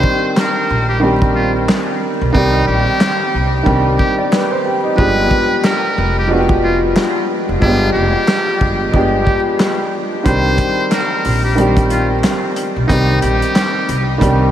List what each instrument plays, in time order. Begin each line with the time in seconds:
Already playing: upright piano D#3 G3 C4 D4 G4, muted trumpet C5
0.04 kick
0.37 muted trumpet A#4, snare, clap
0.70 upright bass A#1
0.89 muted trumpet G4
1.00 upright piano D#3 G3 C4 D4
1.04 upright piano G4
1.22 kick
1.35 muted trumpet F4
1.69 snare, clap
2.21 upright bass B1
2.32 upright bass C2, upright piano D#3 G3 C4 D5, muted trumpet D#4, kick
2.37 upright piano G4
2.67 upright bass A#1, muted trumpet G4
3.01 snare, clap
3.34 upright bass C2
3.63 upright bass C2, upright piano D#3 G3 C4 D4, kick
3.68 upright piano G4
3.99 muted trumpet G4, kick
4.18 upright piano D5
4.32 upright piano B4, snare, clap
4.51 upright piano C5
4.65 upright piano G4
4.84 upright piano D#4
4.95 upright bass G1, upright piano F3 G#3 B3 D4, muted trumpet B4, kick
5.00 upright piano G4
5.31 kick
5.64 muted trumpet A#4, snare, clap
5.98 upright bass F1
6.19 muted trumpet G4
6.27 upright piano F3 G#3 B3 D4
6.32 upright piano F#4
6.39 upright piano G4
6.49 kick
6.64 muted trumpet F4
6.96 snare, clap
7.49 upright bass F1
7.60 upright bass G1, upright piano F3 G#3 B3 D4, muted trumpet F4, kick
7.65 upright piano G4
7.93 upright bass F1, muted trumpet G4
8.28 snare, clap
8.61 upright bass G1, kick
8.91 upright bass G1, upright piano F3 G#3 B3 D4, kick
8.96 upright piano G4
9.22 muted trumpet G4
9.27 kick
9.60 snare, clap
10.23 upright bass C2, upright piano D#3 G3 C4 D4, muted trumpet C5, kick, closed hi-hat
10.28 upright piano G4
10.58 kick, closed hi-hat
10.91 muted trumpet A#4, snare, clap, closed hi-hat
11.25 upright bass A#1, open hi-hat
11.44 muted trumpet G4
11.55 upright piano D#3 G3 C4 D4, closed hi-hat
11.60 upright piano G4
11.77 kick, closed hi-hat
11.90 muted trumpet F4, closed hi-hat
12.23 snare, clap, closed hi-hat
12.56 closed hi-hat
12.76 upright bass B1
12.87 upright bass C2, upright piano D#3 G3 C4 D5, muted trumpet D#4, kick, closed hi-hat
12.92 upright piano G4
13.22 upright bass A#1, muted trumpet G4, closed hi-hat
13.42 closed hi-hat
13.55 snare, clap, closed hi-hat
13.89 upright bass C2, closed hi-hat
14.18 upright bass C2, upright piano D#3 G3 C4 D4, kick, closed hi-hat
14.23 upright piano G4